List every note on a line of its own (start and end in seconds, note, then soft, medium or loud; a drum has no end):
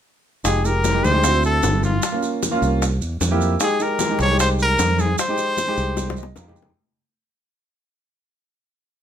0.44 1.00 F1 medium
0.44 0.58 G#3 medium
0.44 0.58 D#4 medium
0.44 0.59 G4 medium
0.44 0.67 G#4 medium
0.44 high bongo medium
0.44 high conga soft
0.44 maracas medium
0.64 0.85 G#3 medium
0.64 0.86 D#4 medium
0.64 0.86 G4 medium
0.64 1.06 A#4 loud
0.64 high bongo soft
0.64 high conga soft
0.64 maracas soft
0.84 high bongo medium
0.84 high conga medium
0.84 maracas medium
0.94 1.08 G#3 medium
0.94 1.08 D#4 medium
0.94 1.08 G4 medium
1.04 1.60 D2 medium
1.04 1.44 C5 loud
1.04 high bongo soft
1.04 high conga medium
1.04 maracas soft
1.14 1.24 G#3 medium
1.14 1.24 D#4 medium
1.14 1.24 G4 medium
1.23 1.87 C4 medium
1.23 1.87 E4 medium
1.23 1.87 F#4 medium
1.23 high bongo medium
1.23 high conga soft
1.23 maracas medium
1.43 1.81 A4 medium
1.43 high conga soft
1.43 maracas soft
1.63 1.98 G1 medium
1.63 high bongo soft
1.63 low bongo medium
1.63 high conga medium
1.63 maracas medium
1.83 2.21 F4 medium
1.83 high conga medium
1.83 maracas soft
2.02 high bongo medium
2.02 high conga soft
2.02 maracas medium
2.12 2.40 A#3 medium
2.12 2.40 C#4 medium
2.12 2.40 F4 medium
2.22 high bongo soft
2.22 high conga soft
2.22 maracas soft
2.43 high bongo medium
2.43 high conga medium
2.43 maracas medium
2.51 2.81 A#3 medium
2.51 2.82 C#4 medium
2.51 2.82 F4 loud
2.62 2.99 C2 medium
2.62 high bongo soft
2.62 high conga soft
2.62 maracas soft
2.82 high bongo medium
2.82 maracas medium
3.01 3.20 E2 medium
3.01 high conga soft
3.01 maracas soft
3.21 3.56 F2 medium
3.21 high bongo soft
3.21 low bongo medium
3.21 high conga medium
3.21 maracas medium
3.31 3.52 A#3 medium
3.31 3.52 E4 medium
3.31 3.52 G4 medium
3.40 high conga soft
3.40 maracas soft
3.60 3.74 G#3 medium
3.60 3.74 D#4 medium
3.60 3.75 G4 medium
3.60 3.84 G#4 medium
3.60 high bongo medium
3.60 high conga soft
3.60 maracas medium
3.79 4.01 G#3 medium
3.79 4.01 D#4 medium
3.79 4.01 G4 medium
3.79 4.21 A#4 medium
3.79 high bongo soft
3.79 high conga soft
3.79 maracas soft
3.99 high bongo medium
3.99 high conga medium
3.99 maracas medium
4.10 4.24 G#3 medium
4.10 4.24 D#4 medium
4.10 4.24 G4 medium
4.19 4.75 C2 medium
4.19 4.39 C#5 medium
4.19 high bongo soft
4.19 high conga medium
4.19 maracas soft
4.30 4.85 G#3 medium
4.30 4.85 D#4 medium
4.30 4.85 G4 medium
4.39 4.49 C5 medium
4.39 high bongo medium
4.39 high conga soft
4.39 maracas medium
4.59 5.02 A#4 medium
4.59 high conga soft
4.59 maracas soft
4.78 5.14 F2 medium
4.78 high bongo soft
4.78 low bongo medium
4.78 high conga medium
4.78 maracas medium
4.98 5.19 G#4 medium
4.98 high conga medium
4.98 maracas soft
5.18 6.33 C5 loud
5.18 high bongo medium
5.18 high conga soft
5.18 maracas medium
5.29 5.56 G#3 medium
5.29 5.56 D#4 medium
5.29 5.57 G4 medium
5.38 high bongo soft
5.38 high conga soft
5.38 maracas soft
5.57 high bongo medium
5.57 high conga medium
5.57 maracas medium
5.67 6.23 G#3 medium
5.67 6.23 D#4 medium
5.67 6.23 G4 loud
5.77 6.33 C2 medium
5.77 high bongo soft
5.77 high conga soft
5.77 maracas soft
5.97 high bongo medium
5.97 high conga medium
5.97 maracas medium
6.10 high bongo medium
6.10 high conga medium
6.17 6.36 D#5 medium
6.17 maracas soft
6.23 high bongo medium
6.36 6.72 F2 medium
6.36 6.56 F5 medium
6.36 low bongo medium
6.36 low conga medium
6.36 maracas medium
6.47 6.68 G#3 medium
6.47 6.68 D#4 medium
6.47 6.68 G4 medium
6.47 low conga medium
6.56 maracas soft
6.62 low bongo medium
6.62 low conga medium